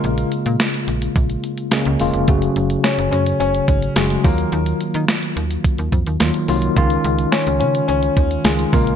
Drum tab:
HH |xxxxxxxxxxxxxxox|xxxxxxxxxxxxxxox|xxxxxxxxxxxxxxox|xxxxxxxxxxxxxxox|
SD |----o-------o---|----o-------o---|----o-------o---|----o-------o---|
BD |--------o-------|o---------o---o-|--------o-o-----|o---------o---o-|